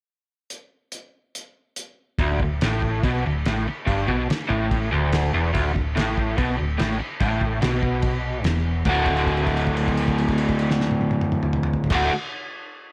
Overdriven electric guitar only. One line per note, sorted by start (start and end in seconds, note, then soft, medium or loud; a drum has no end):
2.21 2.40 D2 loud
2.43 2.58 D2 medium
2.64 3.04 A2 loud
3.04 3.24 B2 loud
3.26 3.42 D2 medium
3.47 3.67 A2 medium
3.68 muted overdriven electric guitar stroke medium
3.87 4.07 G2 loud
4.09 4.29 B2 loud
4.30 muted overdriven electric guitar stroke medium
4.49 4.91 A2 loud
4.92 5.33 D2 loud
5.34 5.53 E2 medium
5.53 5.73 D2 loud
5.74 5.92 D2 medium
5.96 6.37 A2 loud
6.38 6.58 B2 loud
6.59 6.75 D2 medium
6.78 6.99 A2 loud
7.00 muted overdriven electric guitar stroke medium
7.21 7.61 A2 loud
7.62 8.46 B2 loud
8.46 8.85 E2 medium
8.85 11.91 D2 medium
8.85 11.91 A2 loud
8.85 11.92 D3 medium
8.85 11.94 A3 loud
8.85 11.94 F#4 medium
11.91 12.10 D2 loud
11.91 12.10 A2 medium
11.91 12.10 D3 loud
11.91 12.11 A3 loud
11.91 12.12 F#4 loud